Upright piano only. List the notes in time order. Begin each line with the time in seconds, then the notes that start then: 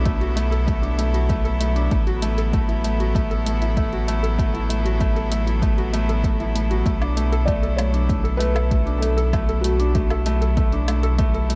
Already playing: A3 D4 F#4 A4
0.05 A3
0.21 F#4
0.36 A3
0.51 A4
0.67 A3
0.82 D4
0.98 A3
1.13 F#4
1.29 A3
1.44 A4
1.60 A3
1.76 D4
1.91 A3
2.07 F#4
2.22 A3
2.38 A4
2.53 A3
2.68 E4
2.84 A3
3.00 F#4
3.15 A3
3.31 A4
3.46 A3
3.62 E4
3.77 A3
3.93 F#4
4.08 A3
4.23 A4
4.38 A3
4.54 E4
4.69 A3
4.85 F#4
5.01 A3
5.16 A4
5.32 A3
5.47 E4
5.62 A3
5.77 F#4
5.93 A3
6.09 A4
6.24 A3
6.40 E4
6.55 A3
6.71 F#4
6.86 A3
7.01 D4
7.17 A3
7.32 A4
7.47 A3
7.63 A4
7.78 A3
7.93 D4
8.08 A3
8.24 A4
8.39 A3
8.55 A4
8.71 A3
8.86 D4
9.02 A3
9.17 A4
9.33 A3
9.49 A4
9.64 A3
9.79 D4
9.95 A3
10.11 A4
10.26 A3
10.41 A4
10.57 A3
10.73 D4
10.88 A3
11.03 A4
11.18 A3
11.34 A4
11.49 A3